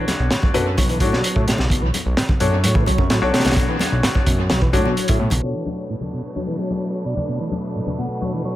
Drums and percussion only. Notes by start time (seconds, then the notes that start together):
0.08 snare, closed hi-hat, high bongo, high conga
0.31 snare, closed hi-hat
0.42 kick, high conga, low conga
0.54 closed hi-hat
0.77 kick, closed hi-hat, high conga
0.89 closed hi-hat
1.00 kick, closed hi-hat
1.12 snare, high conga
1.24 closed hi-hat
1.36 kick
1.48 snare, closed hi-hat
1.58 snare, high conga, low conga
1.70 kick, closed hi-hat
1.94 closed hi-hat, high bongo, high conga
2.17 snare, closed hi-hat
2.29 kick, high conga, low conga
2.40 closed hi-hat
2.64 closed hi-hat, high conga
2.75 kick, high bongo
2.86 closed hi-hat, high bongo
2.98 kick, high bongo, high conga
3.10 snare, closed hi-hat
3.34 snare, closed hi-hat
3.40 snare, closed hi-hat
3.45 snare, closed hi-hat, high conga, low conga
3.51 snare, closed hi-hat
3.56 kick, closed hi-hat
3.79 snare, closed hi-hat, high bongo, high conga
4.03 snare, closed hi-hat
4.15 kick, high conga, low conga
4.26 kick, closed hi-hat
4.50 snare, closed hi-hat, high conga
4.62 kick
4.73 kick, closed hi-hat, low conga
4.86 high conga
4.97 closed hi-hat
5.08 kick, closed hi-hat
5.30 closed hi-hat, high bongo, high conga, low conga
5.65 high bongo, high conga
6.01 high conga, low conga
6.36 high conga
6.48 high bongo
6.59 high bongo
6.71 high bongo, high conga
7.17 high conga, low conga
7.51 high bongo, high conga
7.86 high conga, low conga
8.22 high conga